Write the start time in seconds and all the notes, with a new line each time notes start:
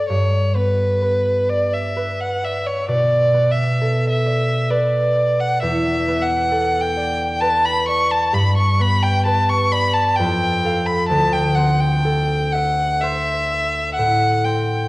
Already playing: A3 A4 B4 D5
0.09 G2 C#5
0.55 B3 B4
1.02 B4
1.49 D5
1.73 E5
1.96 B4
2.21 F#5
2.43 D5 E5
2.66 C#5
2.88 B2 D5
3.34 B3
3.51 E5
3.81 A4
4.10 E5
4.26 D5
4.70 B4 D5
5.16 D5
5.40 F#5
5.62 E2 E5
6.08 B3
6.22 F#5
6.51 A4
6.81 G5
6.96 D5
7.41 B4 A5
7.65 B5
7.88 D5 C#6
8.11 A5
8.33 G2 B5
8.57 C#6
8.79 B3 B5
9.03 G5
9.26 B4 A5
9.49 C#6
9.72 D5 B5
9.94 A5
10.16 F2 G5
10.65 A4 F5
10.86 B5
11.08 D2 A5
11.33 G5
11.55 C4 F#5
11.80 G5
12.05 A4
12.53 E5 F#5
13.01 C5 E5
13.51 E5
13.95 A2 F#5
14.45 C4 G5